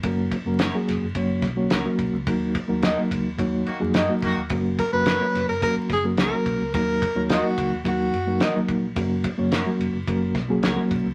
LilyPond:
<<
  \new Staff \with { instrumentName = "Tenor saxophone" } { \time 4/4 \key fis \major \tempo 4 = 108 r1 | r1 | r8 ais'16 b'4 ais'16 ais'8 gis'8 ais'4 | ais'4 fis'4 fis'4. r8 |
r1 | }
  \new Staff \with { instrumentName = "Clean electric guitar" } { \time 4/4 \key fis \major r4 <cis' fis' ais' cis''>16 r4. r16 <cis' fis' ais' cis''>16 r8. | r4 <dis' fis' ais' dis''>16 r4. r16 <dis' fis' ais' dis''>16 r8. | r4 <cis' fis' ais' cis''>16 r4. r16 <cis' fis' ais' cis''>16 r8. | r4 <dis' fis' ais' dis''>16 r4. r16 <dis' fis' ais' dis''>16 r8. |
r4 <cis' fis' ais' cis''>16 r4. r16 <cis' fis' ais' cis''>16 r8. | }
  \new Staff \with { instrumentName = "Reed electric piano" } { \time 4/4 \key fis \major <fis ais cis' fis' ais'>8 r16 <fis ais cis' fis' ais'>16 r16 <fis ais cis' fis' gis'>8 r16 <fis ais cis' fis' cis''>8 r16 <fis ais cis' fis' cis''>16 r16 <fis ais cis' fis' ais'>8 r16 | <fis ais dis' fis' ais'>8 r16 <fis ais dis' fis' ais'>16 r16 <fis ais dis' fis' ais'>8 r16 <fis ais dis' fis' cis''>8 r16 <fis ais dis' fis' gis'>16 r16 <fis ais dis' fis' ais'>8 r16 | <fis ais cis' fis' ais'>8 r16 <fis ais cis' fis' ais'>16 r16 <fis ais cis' fis' cis''>8 r16 <fis ais cis' fis' ais'>8 r16 <fis ais cis' fis' ais'>16 r16 <fis ais cis' fis' ais'>8 r16 | <fis ais dis' fis' ais'>8 r16 <fis ais dis' fis' cis''>16 r16 <fis ais dis' fis' ais'>8 r16 <fis ais dis' fis' ais'>8 r16 <fis ais dis' fis' ais'>16 r16 <fis ais dis' fis' ais'>8 r16 |
<fis ais cis' fis' ais'>8 r16 <fis ais cis' fis' cis''>16 r16 <fis ais cis' fis' ais'>8 r16 <fis ais cis' fis' ais'>8 r16 <fis ais cis' fis' gis'>16 r16 <fis ais cis' fis' ais'>8 r16 | }
  \new Staff \with { instrumentName = "Horn section" } { \time 4/4 \key fis \major r1 | r2 r8 <dis ais fis'>16 r16 <dis ais fis'>16 r16 <dis ais fis'>8 | r1 | r1 |
r1 | }
  \new Staff \with { instrumentName = "Fingered electric bass" } { \clef bass \time 4/4 \key fis \major fis,,8 r16 fis,,8 r16 eis,,16 fis,,16 fis,,8 b,,8 cis,16 r16 b,,16 cis,16 | dis,8 r16 dis,8 r16 cis,16 dis,16 dis,8 r16 eis,16 r8 eis,16 dis,16 | fis,,8 r16 fis,,8 r16 eis,,16 fis,,16 r8 fis,,8 cis,16 r16 b,,16 cis,16 | dis,8 r16 dis,8 r16 cis,16 dis,16 dis,8 fis,8 dis8 ais,,8 |
fis,,8 r16 fis,,8 r16 eis,,16 fis,,16 fis,,8 b,,8 cis,16 r16 b,,16 cis,16 | }
  \new DrumStaff \with { instrumentName = "Drums" } \drummode { \time 4/4 <bd cymr>8 <bd cymr>8 <cymr sn>8 <cymr sn>8 <bd cymr>8 <bd cymr sn>8 <cymr sn>8 <bd cymr>8 | <bd cymr>8 <bd cymr>8 <cymr sn>8 <bd cymr>8 <bd cymr>8 cymr8 <cymr sn>8 <bd cymr>8 | <bd cymr>8 <bd cymr>8 <cymr sn>8 <cymr sn>8 <bd cymr>8 <bd cymr sn>8 <cymr sn>8 <bd cymr>8 | <bd cymr>8 <bd cymr>8 <cymr sn>8 <bd cymr>8 <bd cymr>8 cymr8 <cymr sn>8 <bd cymr>8 |
<bd cymr>8 <bd cymr>8 <cymr sn>8 cymr8 <bd cymr>8 <bd cymr sn>8 <cymr sn>8 <bd cymr>8 | }
>>